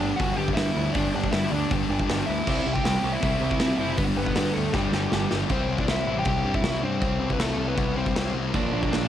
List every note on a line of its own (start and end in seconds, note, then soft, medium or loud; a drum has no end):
0.00 0.12 G1 medium
0.00 0.16 G2 medium
0.00 0.17 G2 loud
0.00 0.17 D3 medium
0.00 0.17 D3 loud
0.00 0.19 G3 loud
0.00 0.18 G3 medium
0.00 0.19 B3 medium
0.00 0.15 D4 medium
0.00 0.18 D4 loud
0.00 0.20 G4 loud
0.00 0.20 D5 loud
0.16 0.32 G1 medium
0.16 0.36 G2 medium
0.16 0.37 D3 medium
0.16 0.38 G3 medium
0.16 0.37 B3 medium
0.16 0.38 D4 medium
0.16 0.37 F#4 medium
0.16 0.36 F#5 medium
0.16 kick loud
0.16 open hi-hat medium
0.21 0.39 G4 medium
0.36 0.50 G1 medium
0.36 0.55 G2 medium
0.36 0.56 D3 medium
0.36 0.58 G3 loud
0.36 0.57 B3 loud
0.36 0.57 D4 medium
0.36 0.56 G4 medium
0.36 0.59 G4 loud
0.36 0.54 G5 loud
0.48 kick medium
0.54 0.74 G2 medium
0.54 0.69 G2 loud
0.54 0.75 D3 medium
0.54 0.76 G3 loud
0.54 0.76 B3 medium
0.54 0.92 E4 medium
0.54 0.95 E5 loud
0.54 snare loud
0.54 open hi-hat medium
0.59 0.76 D4 medium
0.59 0.77 G4 loud
0.76 0.88 D2 medium
0.76 0.93 G2 medium
0.76 0.94 D3 loud
0.76 0.95 G3 medium
0.76 0.95 B3 loud
0.76 0.95 D4 loud
0.76 0.96 G4 medium
0.93 1.07 G1 medium
0.93 1.12 G2 medium
0.93 1.13 D3 loud
0.93 1.14 G3 loud
0.93 1.14 B3 medium
0.93 1.13 D4 medium
0.93 1.14 D4 loud
0.93 1.15 G4 loud
0.93 1.12 D5 medium
0.93 kick loud
0.93 open hi-hat medium
1.13 1.27 G1 medium
1.13 1.31 G2 medium
1.13 1.32 D3 medium
1.13 1.33 G3 medium
1.13 1.33 B3 medium
1.13 1.33 D4 medium
1.13 1.32 D4 medium
1.13 1.34 G4 medium
1.13 1.33 D5 loud
1.24 kick medium
1.32 1.51 G2 medium
1.32 1.45 G2 loud
1.32 1.51 D3 medium
1.32 1.53 G3 medium
1.32 1.52 B3 loud
1.32 1.53 D4 medium
1.32 1.51 E4 medium
1.32 1.54 G4 loud
1.32 1.51 E5 loud
1.32 snare loud
1.32 open hi-hat medium
1.51 1.64 D2 medium
1.51 1.69 G2 medium
1.51 1.70 D3 medium
1.51 1.71 G3 medium
1.51 1.71 B3 medium
1.51 2.25 D4 medium
1.51 1.71 D4 medium
1.51 1.73 G4 loud
1.51 2.26 D5 medium
1.70 1.83 G1 loud
1.70 1.88 G2 medium
1.70 1.89 D3 medium
1.70 1.90 G3 medium
1.70 1.89 B3 medium
1.70 1.90 D4 loud
1.70 1.91 G4 loud
1.70 kick loud
1.70 open hi-hat medium
1.89 2.02 G1 loud
1.89 2.07 G2 medium
1.89 2.07 D3 loud
1.89 2.08 G3 loud
1.89 2.08 B3 loud
1.89 2.09 D4 loud
1.89 2.10 G4 loud
1.99 kick medium
2.08 2.21 G1 loud
2.08 2.26 G2 medium
2.08 2.27 D3 loud
2.08 2.28 G3 loud
2.08 2.28 B3 loud
2.08 2.28 D4 loud
2.08 2.30 G4 loud
2.08 snare loud
2.08 open hi-hat medium
2.26 2.40 D2 medium
2.26 2.45 G2 medium
2.26 2.45 D3 loud
2.26 2.47 G3 loud
2.26 2.46 B3 medium
2.26 2.46 D4 loud
2.26 2.72 E4 medium
2.26 2.48 G4 medium
2.26 2.75 E5 loud
2.46 2.59 C2 medium
2.46 2.65 C3 medium
2.46 2.66 G3 loud
2.46 2.66 C4 medium
2.46 2.66 E4 loud
2.46 2.68 G4 loud
2.46 kick loud
2.46 crash loud
2.66 2.78 C2 medium
2.66 2.84 C3 medium
2.66 2.85 G3 medium
2.66 2.84 C4 medium
2.66 2.85 E4 loud
2.66 2.86 G4 loud
2.74 3.11 G4 medium
2.74 3.13 G5 loud
2.74 kick medium
2.85 2.97 C2 loud
2.85 3.02 C3 medium
2.85 3.04 G3 loud
2.85 3.03 C4 medium
2.85 3.04 E4 loud
2.85 3.05 G4 loud
2.85 snare loud
2.85 open hi-hat medium
3.03 3.15 C2 medium
3.03 3.22 C3 medium
3.03 3.23 G3 loud
3.03 3.23 C4 medium
3.03 3.23 E4 loud
3.03 3.24 G4 medium
3.13 3.76 E4 medium
3.13 3.77 E5 loud
3.23 3.35 C2 medium
3.23 3.40 C3 medium
3.23 3.42 G3 medium
3.23 3.41 C4 medium
3.23 3.42 E4 loud
3.23 3.43 G4 loud
3.23 kick loud
3.23 open hi-hat medium
3.41 3.53 C2 loud
3.41 3.60 C3 loud
3.41 3.61 G3 medium
3.41 3.61 C4 medium
3.41 3.61 E4 loud
3.41 3.62 G4 loud
3.51 kick medium
3.60 3.72 C3 loud
3.60 3.78 C3 loud
3.60 3.80 G3 medium
3.60 3.79 C4 loud
3.60 3.80 E4 medium
3.60 3.80 G4 medium
3.60 snare loud
3.60 open hi-hat medium
3.78 3.98 F#1 medium
3.78 3.97 C3 medium
3.78 3.99 G3 medium
3.78 3.97 C4 medium
3.78 3.97 E4 medium
3.78 3.98 E4 medium
3.78 4.00 G4 medium
3.78 3.98 E5 medium
3.97 4.10 G1 loud
3.97 4.15 G2 loud
3.97 4.15 D3 medium
3.97 4.16 G3 loud
3.97 4.04 B3 medium
3.97 4.17 B3 loud
3.97 4.17 D4 loud
3.97 4.17 G4 loud
3.97 4.03 B4 medium
3.97 kick loud
3.97 open hi-hat medium
4.16 4.29 G1 medium
4.16 4.34 G2 medium
4.16 4.35 D3 loud
4.16 4.35 G3 medium
4.16 4.36 B3 medium
4.16 4.53 B3 medium
4.16 4.37 D4 loud
4.16 4.37 G4 loud
4.16 4.56 B4 medium
4.26 kick medium
4.35 4.54 G2 medium
4.35 4.49 G2 medium
4.35 4.54 D3 medium
4.35 4.55 G3 medium
4.35 4.55 B3 loud
4.35 4.55 D4 loud
4.35 4.55 G4 medium
4.35 snare loud
4.35 open hi-hat medium
4.54 4.68 D2 medium
4.54 4.72 G2 medium
4.54 4.73 D3 loud
4.54 4.73 G3 medium
4.54 4.72 A3 medium
4.54 4.73 B3 loud
4.54 4.74 D4 loud
4.54 4.74 G4 medium
4.54 4.74 A4 medium
4.73 4.86 G1 loud
4.73 4.91 G2 medium
4.73 4.92 D3 medium
4.73 4.92 G3 medium
4.73 5.28 G3 medium
4.73 4.92 B3 medium
4.73 4.93 D4 medium
4.73 5.31 G4 medium
4.73 4.93 G4 medium
4.73 kick loud
4.73 snare medium
4.92 5.05 G1 medium
4.92 5.09 G2 loud
4.92 5.09 D3 loud
4.92 5.10 G3 medium
4.92 5.10 B3 loud
4.92 5.11 D4 loud
4.92 5.11 G4 medium
4.92 snare medium
5.10 5.24 G1 loud
5.10 5.28 G2 medium
5.10 5.28 D3 medium
5.10 5.29 G3 medium
5.10 5.30 B3 medium
5.10 5.30 D4 medium
5.10 5.30 G4 loud
5.10 snare loud
5.29 5.43 G1 medium
5.29 5.48 G2 medium
5.29 5.47 D3 medium
5.29 5.48 G3 medium
5.29 5.49 B3 medium
5.29 5.49 D4 medium
5.29 5.49 G4 medium
5.29 snare loud
5.48 5.68 C2 medium
5.48 5.67 C3 medium
5.48 5.68 G3 medium
5.48 5.68 C4 loud
5.48 5.77 C4 medium
5.48 5.68 E4 medium
5.48 kick loud
5.48 crash medium
5.52 5.80 C5 medium
5.67 5.86 C2 medium
5.67 5.86 C3 medium
5.67 5.87 G3 loud
5.67 5.87 C4 medium
5.67 5.87 E4 medium
5.78 5.83 D4 medium
5.78 5.84 D5 loud
5.78 kick medium
5.87 6.06 C2 loud
5.87 6.06 C3 medium
5.87 6.07 G3 medium
5.87 6.07 C4 loud
5.87 6.08 E4 loud
5.87 6.15 E4 medium
5.87 snare loud
5.87 crash medium
5.91 6.19 E5 loud
6.06 6.25 A1 medium
6.06 6.24 C3 medium
6.06 6.25 G3 medium
6.06 6.25 C4 loud
6.06 6.25 E4 medium
6.18 6.26 G4 medium
6.18 6.27 G5 loud
6.25 6.44 C2 medium
6.25 6.44 C3 loud
6.25 6.44 G3 medium
6.25 6.44 C4 medium
6.25 6.45 E4 loud
6.25 6.53 G4 medium
6.25 6.55 G5 medium
6.25 kick loud
6.25 crash medium
6.45 6.63 G2 medium
6.45 6.61 C3 medium
6.45 6.62 G3 medium
6.45 6.63 C4 medium
6.45 6.63 E4 medium
6.54 6.81 E4 medium
6.54 6.81 E5 loud
6.54 kick medium
6.63 6.82 C2 loud
6.63 6.80 C3 medium
6.63 6.81 G3 medium
6.63 6.81 C4 medium
6.63 6.82 E4 loud
6.63 snare loud
6.63 crash medium
6.81 7.01 G2 medium
6.81 6.99 C3 medium
6.81 6.99 G3 medium
6.81 6.99 C4 loud
6.81 7.27 C4 medium
6.81 7.00 E4 medium
6.81 7.32 C5 loud
7.00 7.19 C2 medium
7.00 7.18 C3 medium
7.00 7.19 G3 medium
7.00 7.19 C4 medium
7.00 7.20 E4 loud
7.00 kick loud
7.00 crash medium
7.19 7.38 C2 medium
7.19 7.38 C3 loud
7.19 7.38 G3 medium
7.19 7.39 C4 medium
7.19 7.39 E4 medium
7.30 7.40 B3 medium
7.30 7.41 B4 medium
7.30 kick medium
7.39 7.56 C2 medium
7.39 7.56 C3 medium
7.39 7.57 G3 medium
7.39 7.67 A3 medium
7.39 7.57 C4 loud
7.39 7.58 E4 loud
7.39 7.67 A4 loud
7.39 snare loud
7.39 crash medium
7.57 7.76 C2 medium
7.57 7.75 C3 medium
7.57 7.75 G3 medium
7.57 7.76 C4 medium
7.57 7.76 E4 medium
7.68 7.95 B3 medium
7.68 7.97 B4 loud
7.76 8.14 C2 medium
7.76 7.94 C3 loud
7.76 7.95 G3 medium
7.76 7.95 C4 medium
7.76 7.96 E4 loud
7.76 kick loud
7.76 crash medium
7.95 8.13 C3 medium
7.95 8.14 G3 medium
7.95 8.14 C4 medium
7.95 8.32 C4 medium
7.95 8.15 E4 medium
7.95 8.33 C5 medium
8.06 kick medium
8.15 8.33 C2 loud
8.15 8.33 C3 medium
8.15 8.34 G3 medium
8.15 8.34 C4 medium
8.15 8.35 E4 loud
8.15 snare loud
8.15 crash medium
8.34 8.52 C2 medium
8.34 8.53 C3 medium
8.34 8.53 G3 medium
8.34 8.53 C4 medium
8.34 8.53 E4 loud
8.54 8.72 A#1 medium
8.54 8.71 A#2 loud
8.54 8.71 D3 loud
8.54 8.72 F3 medium
8.54 8.73 A#3 loud
8.54 8.81 D4 medium
8.54 8.73 D4 medium
8.54 8.81 D5 medium
8.54 kick loud
8.54 crash medium
8.71 8.91 A#1 medium
8.71 8.90 A#2 medium
8.71 8.90 D3 loud
8.71 8.91 F3 medium
8.71 8.91 A#3 loud
8.71 8.92 D4 medium
8.83 9.08 D4 medium
8.83 9.08 D5 loud
8.83 kick medium
8.90 9.08 A#1 medium
8.90 9.08 A#2 medium
8.90 9.08 D3 medium
8.90 9.08 F3 loud
8.90 9.08 A#3 loud
8.90 9.08 D4 loud
8.90 snare loud
8.90 crash medium